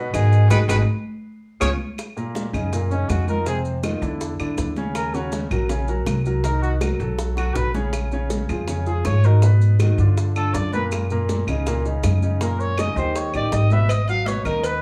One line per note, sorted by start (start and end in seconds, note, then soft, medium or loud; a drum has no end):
0.00 0.10 B2 medium
0.00 0.11 B2 medium
0.00 0.11 B3 medium
0.00 0.10 F#4 medium
0.00 0.11 B4 medium
0.13 0.48 G#2 loud
0.13 0.48 B2 medium
0.13 0.44 D#3 medium
0.13 0.44 D#4 medium
0.13 0.48 G#4 medium
0.13 0.44 D#5 medium
0.13 high bongo soft
0.13 low bongo medium
0.13 high conga soft
0.13 claves medium
0.13 maracas medium
0.32 high bongo soft
0.32 maracas soft
0.50 0.64 G#1 medium
0.50 0.59 D#3 loud
0.50 0.62 D#4 medium
0.50 0.62 F#4 medium
0.50 0.62 G#4 medium
0.50 0.59 B4 medium
0.50 high bongo loud
0.50 high conga loud
0.50 claves medium
0.50 maracas loud
0.68 0.82 G#1 loud
0.68 0.77 D#3 medium
0.68 0.81 D#4 medium
0.68 0.81 F#4 medium
0.68 0.81 G#4 medium
0.68 0.78 B4 medium
0.68 high bongo loud
0.68 high conga loud
0.68 claves loud
0.68 maracas loud
1.61 1.75 C#2 medium
1.61 1.70 C#3 medium
1.61 1.73 B3 medium
1.61 1.73 C#4 medium
1.61 1.73 F4 loud
1.61 1.70 C#5 loud
1.61 high bongo medium
1.61 high conga medium
1.61 claves medium
1.61 maracas loud
1.98 high bongo medium
1.98 high conga soft
1.98 claves medium
1.98 maracas medium
2.17 2.47 A#2 medium
2.17 2.47 A#3 medium
2.17 2.48 A#4 medium
2.17 high bongo soft
2.17 high conga soft
2.17 maracas soft
2.35 high bongo medium
2.35 high conga loud
2.35 maracas medium
2.53 3.05 F#2 medium
2.53 2.69 C#3 medium
2.53 2.69 C#4 medium
2.53 2.69 D#4 medium
2.53 high bongo soft
2.53 high conga soft
2.53 low conga medium
2.53 claves medium
2.53 maracas soft
2.72 2.88 A#2 medium
2.72 2.88 A#3 medium
2.72 2.88 A#4 medium
2.72 high bongo medium
2.72 maracas medium
2.90 3.22 C#3 medium
2.90 3.11 C#4 medium
2.90 3.22 C#4 medium
2.90 3.22 D#4 medium
2.90 high bongo soft
2.90 high conga soft
2.90 maracas soft
3.09 3.96 F2 medium
3.09 3.28 F#4 medium
3.09 high bongo medium
3.09 low bongo medium
3.09 high conga medium
3.09 claves medium
3.09 maracas medium
3.28 3.43 D#3 medium
3.28 3.43 D#4 medium
3.28 3.43 F4 medium
3.28 3.46 A#4 medium
3.28 high conga medium
3.28 maracas soft
3.46 3.77 C3 medium
3.46 3.77 C4 medium
3.46 3.58 G#4 medium
3.46 3.77 C5 medium
3.46 high bongo medium
3.46 high conga soft
3.46 maracas medium
3.65 high conga soft
3.65 maracas soft
3.83 3.98 D#3 medium
3.83 3.99 D#4 medium
3.83 3.99 F4 medium
3.83 high bongo medium
3.83 high conga medium
3.83 claves medium
3.83 maracas medium
4.02 4.36 E2 loud
4.02 4.32 D3 medium
4.02 4.33 D4 medium
4.02 4.33 E4 medium
4.02 high bongo soft
4.02 high conga soft
4.02 maracas soft
4.21 high bongo medium
4.21 high conga soft
4.21 maracas medium
4.39 4.57 E2 medium
4.39 4.70 D3 medium
4.39 4.70 D4 medium
4.39 4.70 E4 medium
4.39 high bongo soft
4.39 high conga soft
4.39 claves medium
4.39 maracas soft
4.58 5.45 D#2 medium
4.58 high bongo medium
4.58 low bongo medium
4.58 high conga soft
4.58 maracas medium
4.76 5.07 C#3 medium
4.76 5.08 C#4 medium
4.76 5.08 C#5 medium
4.76 high bongo soft
4.76 high conga medium
4.76 maracas soft
4.95 5.16 A#4 medium
4.95 high bongo medium
4.95 high conga soft
4.95 claves medium
4.95 maracas medium
5.14 5.45 C#3 medium
5.14 5.45 C#4 medium
5.14 5.33 F#4 medium
5.14 5.45 C#5 medium
5.14 high bongo soft
5.14 high conga soft
5.14 maracas soft
5.32 high bongo medium
5.32 high conga medium
5.32 maracas medium
5.51 6.03 A#1 loud
5.51 5.67 F#3 medium
5.51 5.67 F#4 medium
5.51 5.67 A#4 medium
5.51 high bongo soft
5.51 high conga soft
5.51 low conga medium
5.51 claves medium
5.51 maracas soft
5.69 5.85 C#3 medium
5.69 5.85 C#4 medium
5.69 5.85 C#5 medium
5.69 high bongo medium
5.69 high conga soft
5.69 low conga medium
5.69 maracas medium
5.88 6.19 F#3 medium
5.88 6.19 F#4 medium
5.88 6.19 A#4 medium
5.88 high bongo soft
5.88 high conga soft
5.88 maracas soft
6.06 6.94 C2 medium
6.06 high bongo medium
6.06 low bongo medium
6.06 high conga medium
6.06 claves medium
6.06 maracas medium
6.26 6.41 F#3 medium
6.26 6.41 F#4 medium
6.26 6.42 A#4 medium
6.26 maracas soft
6.44 6.75 D#3 medium
6.44 6.75 D#4 medium
6.44 6.62 A#4 medium
6.44 6.75 D#5 medium
6.44 high bongo medium
6.44 high conga soft
6.44 maracas medium
6.62 6.74 F#4 medium
6.62 high conga soft
6.62 maracas soft
6.81 6.97 F#3 medium
6.81 6.97 F#4 medium
6.81 6.97 A#4 medium
6.81 high bongo medium
6.81 high conga medium
6.81 claves medium
6.81 maracas medium
7.00 7.52 B1 loud
7.00 7.31 F#3 medium
7.00 7.31 F#4 medium
7.00 7.31 A4 medium
7.00 high bongo soft
7.00 high conga soft
7.00 maracas soft
7.18 high bongo medium
7.18 high conga soft
7.18 maracas medium
7.37 7.68 F#3 medium
7.37 7.57 F#4 loud
7.37 7.68 F#4 medium
7.37 7.69 A4 medium
7.37 high bongo medium
7.37 high conga soft
7.37 claves medium
7.37 maracas soft
7.55 8.44 A#1 medium
7.55 7.73 B4 medium
7.55 low bongo loud
7.55 high conga soft
7.55 maracas medium
7.74 8.05 C#3 medium
7.74 8.06 C#4 medium
7.74 7.92 G#4 medium
7.74 8.06 C#5 medium
7.74 low bongo medium
7.74 high conga medium
7.74 maracas soft
7.93 high bongo medium
7.93 high conga soft
7.93 claves medium
7.93 maracas medium
8.11 8.43 C#3 medium
8.11 8.43 C#4 medium
8.11 8.43 C#5 medium
8.11 high bongo soft
8.11 high conga soft
8.11 maracas soft
8.30 high bongo medium
8.30 high conga medium
8.30 maracas medium
8.49 9.01 F2 loud
8.49 8.65 F3 medium
8.49 8.65 F4 medium
8.49 8.66 G#4 medium
8.49 high bongo soft
8.49 high conga soft
8.49 low conga medium
8.49 claves medium
8.49 maracas soft
8.68 8.84 C#3 medium
8.68 8.84 C#4 medium
8.68 8.84 C#5 medium
8.68 high bongo medium
8.68 high conga soft
8.68 low conga medium
8.68 maracas medium
8.86 9.17 F3 medium
8.86 9.18 F4 medium
8.86 9.07 G#4 medium
8.86 9.18 G#4 medium
8.86 high bongo soft
8.86 high conga soft
8.86 maracas soft
9.05 9.93 G#2 medium
9.05 9.27 C#5 loud
9.05 high bongo medium
9.05 low bongo medium
9.05 high conga medium
9.05 claves medium
9.05 maracas medium
9.24 9.40 D#3 medium
9.24 9.40 D#4 medium
9.24 9.40 F#4 medium
9.24 9.43 A#4 medium
9.24 maracas soft
9.42 9.74 B2 medium
9.42 9.74 B3 medium
9.42 9.74 B4 medium
9.42 high bongo medium
9.42 high conga soft
9.42 maracas medium
9.61 high conga soft
9.61 maracas soft
9.79 9.96 D#3 medium
9.79 9.96 D#4 medium
9.79 9.96 F#4 medium
9.79 high bongo medium
9.79 high conga medium
9.79 claves medium
9.79 maracas medium
9.98 10.50 G2 loud
9.98 10.30 D3 medium
9.98 10.30 D4 medium
9.98 10.30 F4 medium
9.98 high bongo soft
9.98 high conga soft
9.98 maracas soft
10.17 high bongo medium
10.17 high conga soft
10.17 maracas medium
10.36 10.67 D3 medium
10.36 10.67 D4 medium
10.36 10.67 F4 medium
10.36 10.56 A4 loud
10.36 high bongo soft
10.36 high conga soft
10.36 claves medium
10.36 maracas soft
10.54 11.42 F#2 loud
10.54 10.73 D5 loud
10.54 high bongo medium
10.54 low bongo medium
10.54 high conga soft
10.54 maracas medium
10.73 11.04 A#2 medium
10.73 11.04 A#3 medium
10.73 11.05 A#4 medium
10.73 10.84 B4 medium
10.73 high bongo soft
10.73 high conga medium
10.73 maracas soft
10.92 high bongo medium
10.92 high conga soft
10.92 claves medium
10.92 maracas medium
11.10 11.42 A#2 medium
11.10 11.42 A#3 medium
11.10 11.42 A#4 medium
11.10 high bongo soft
11.10 high conga soft
11.10 maracas soft
11.29 high bongo medium
11.29 high conga medium
11.29 maracas medium
11.47 11.99 C#2 medium
11.47 11.63 C#3 medium
11.47 11.64 C#4 medium
11.47 11.64 D#4 medium
11.47 high bongo soft
11.47 high conga soft
11.47 low conga medium
11.47 claves medium
11.47 maracas soft
11.66 11.82 A#2 medium
11.66 11.82 A#3 medium
11.66 11.82 A#4 medium
11.66 high bongo medium
11.66 high conga soft
11.66 low conga medium
11.66 maracas medium
11.85 12.15 C#3 medium
11.85 12.16 C#4 medium
11.85 12.16 D#4 medium
11.85 high bongo soft
11.85 high conga soft
11.85 maracas soft
12.03 12.91 F#2 medium
12.03 high bongo medium
12.03 low bongo medium
12.03 high conga medium
12.03 claves medium
12.03 maracas medium
12.22 12.38 C#3 medium
12.22 12.38 C#4 medium
12.22 12.38 D#4 medium
12.22 maracas soft
12.41 12.71 A#2 medium
12.41 12.72 A#3 medium
12.41 12.72 A#4 medium
12.41 12.61 A#4 medium
12.41 high bongo medium
12.41 high conga soft
12.41 maracas medium
12.59 12.81 C#5 loud
12.59 high conga soft
12.59 maracas soft
12.78 12.94 C#3 medium
12.78 12.94 C#4 medium
12.78 12.94 D#4 medium
12.78 12.97 D#5 loud
12.78 high bongo medium
12.78 high conga loud
12.78 claves medium
12.78 maracas medium
12.96 13.31 D#2 loud
12.96 13.28 D#3 medium
12.96 13.28 D#4 medium
12.96 13.28 G4 medium
12.96 13.18 C5 medium
12.96 high bongo soft
12.96 high conga soft
12.96 maracas soft
13.15 13.35 C#5 medium
13.15 high bongo medium
13.15 high conga soft
13.15 maracas medium
13.33 13.51 A1 medium
13.33 13.65 D#3 medium
13.33 13.65 D#4 medium
13.33 13.65 G4 medium
13.33 13.55 D5 loud
13.33 high bongo soft
13.33 high conga soft
13.33 claves medium
13.33 maracas soft
13.52 14.39 G#1 loud
13.52 13.73 D#5 medium
13.52 high bongo medium
13.52 low bongo medium
13.52 high conga soft
13.52 maracas medium
13.70 13.87 B2 medium
13.70 13.87 B3 medium
13.70 13.87 B4 medium
13.70 13.91 E5 loud
13.70 high bongo soft
13.70 high conga medium
13.70 maracas soft
13.89 14.08 D#5 medium
13.89 cowbell loud
13.89 high conga soft
13.89 claves medium
13.89 maracas medium
14.08 14.24 F#3 medium
14.08 14.24 F#4 medium
14.08 14.28 F5 loud
14.08 14.24 F#5 medium
14.08 cowbell medium
14.08 high conga soft
14.08 maracas soft
14.26 14.43 B2 medium
14.26 14.43 B3 medium
14.26 14.43 B4 medium
14.26 14.44 C#5 loud
14.26 cowbell medium
14.26 high conga medium
14.26 maracas medium
14.45 14.82 D#2 medium
14.45 14.76 D#3 medium
14.45 14.76 D#4 medium
14.45 14.66 A#4 loud
14.45 14.76 D#5 medium
14.45 high conga soft
14.45 low conga medium
14.45 claves medium
14.45 maracas soft
14.64 14.82 B4 loud
14.64 cowbell loud
14.64 high conga soft
14.64 maracas medium